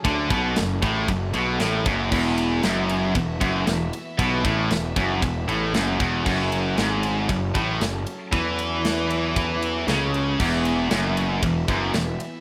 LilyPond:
<<
  \new Staff \with { instrumentName = "String section" } { \time 4/4 \key fis \minor \tempo 4 = 116 << { <fis cis' a'>1 | <e b e''>1~ | <e b e''>1 | <fis cis' a'>1~ |
<fis cis' a'>1 | <e b e''>1 | } \\ { gis'1 | fis'1 | gis'1~ | gis'1 |
fis'1~ | fis'1 | } >> }
  \new Staff \with { instrumentName = "Distorted electric guitar" } { \clef bass \time 4/4 \key fis \minor d8 b,8 fis,8 a,8 fis,8 b,8 a,8 fis,8 | e,4 fis,4 e,8 fis,8 e,8 r8 | b,8 a,8 e,8 fis,8 e,8 a,8 fis,8 e,8 | fis,4 gis,4 fis,8 a,8 fis,8 r8 |
e2. cis4 | e,4 fis,4 e,8 fis,8 e,8 r8 | }
  \new Staff \with { instrumentName = "Distorted electric guitar" } { \clef bass \time 4/4 \key fis \minor d8 b,8 fis,8 a,8 fis,8 b,8 a,8 fis,8 | e,4 fis,4 e,8 fis,8 e,8 r8 | b,8 a,8 e,8 fis,8 e,8 a,8 fis,8 e,8 | fis,4 gis,4 fis,8 a,8 fis,8 r8 |
e2. cis4 | e,4 fis,4 e,8 fis,8 e,8 r8 | }
  \new Staff \with { instrumentName = "Distorted electric guitar" } { \clef bass \time 4/4 \key fis \minor d8 b,8 fis,8 a,8 fis,8 b,8 a,8 fis,8 | e,4 fis,4 e,8 fis,8 e,8 r8 | b,8 a,8 e,8 fis,8 e,8 a,8 fis,8 e,8 | fis,4 gis,4 fis,8 a,8 fis,8 r8 |
e2. cis4 | e,4 fis,4 e,8 fis,8 e,8 r8 | }
  \new Staff \with { instrumentName = "Picked electric bass" } { \clef bass \time 4/4 \key fis \minor d,8 b,,8 fis,,8 a,,8 fis,,8 b,,8 a,,8 fis,,8 | e,,4 fis,,4 e,,8 fis,,8 e,,8 r8 | b,,8 a,,8 e,,8 fis,,8 e,,8 a,,8 fis,,8 e,,8 | fis,,4 gis,,4 fis,,8 a,,8 fis,,8 r8 |
e,2. cis,4 | e,,4 fis,,4 e,,8 fis,,8 e,,8 r8 | }
  \new DrumStaff \with { instrumentName = "Drums" } \drummode { \time 4/4 <bd cymr>8 <bd cymr>8 <cymr sn>8 <bd cymr>8 <bd cymr>8 cymr8 <cymr sn>8 <bd cymr>8 | <cymc bd>8 cymr8 <cymr sn>8 cymr8 <bd cymr>8 <bd cymr>8 <cymr sn>8 cymr8 | <bd cymr>8 <bd cymr>8 <cymr sn>8 <bd cymr>8 <bd cymr>8 cymr8 <cymr sn>8 <bd cymr>8 | <cymc bd>8 cymr8 <cymr sn>8 cymr8 <bd cymr>8 <bd cymr>8 <cymr sn>8 cymr8 |
<bd cymr>8 cymr8 <cymr sn>8 cymr8 <bd cymr>8 cymr8 <cymr sn>8 cymr8 | <cymc bd>8 cymr8 <cymr sn>8 cymr8 <bd cymr>8 <bd cymr>8 <cymr sn>8 cymr8 | }
>>